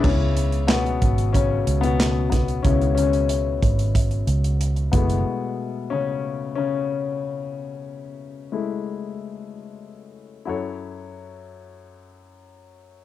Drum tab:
CC |x---------------|----------------|----------------|----------------|
HH |--xxxxxxx-xxx-xx|xxxxx-xxxxxxxxxx|----------------|----------------|
CP |----x-------x---|----------------|----------------|----------------|
SD |----o-------o-o-|----------------|----------------|----------------|
BD |o-----o-o-----o-|o-----o-o-----o-|----------------|----------------|

CC |----------------|
HH |----------------|
CP |----------------|
SD |----------------|
BD |----------------|